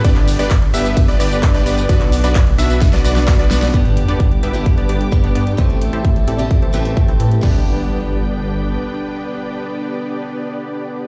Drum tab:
CC |----------------|----------------|----------------|----------------|
RD |x---x---x---x---|x---x---x---x---|----------------|----------------|
HH |xxoxxxoxxxoxxxox|xxoxxxoxxxoxxxox|xxxxxxxxxxxxxxxx|xxxxxxxxxxxxxxxx|
TB |x-xxx-xxx-xxx-xx|x-xxx-xxx-xxx-xx|----------------|----------------|
CP |-x--x-------x---|-x--x-------x---|----------------|----------------|
SD |----------------|--------oo-oo-oo|----------------|----------------|
BD |o---o---o---o---|o---o---o---o---|o---o---o---o---|o---o---o---o---|

CC |x---------------|----------------|
RD |----------------|----------------|
HH |----------------|----------------|
TB |----------------|----------------|
CP |----------------|----------------|
SD |----------------|----------------|
BD |o---------------|----------------|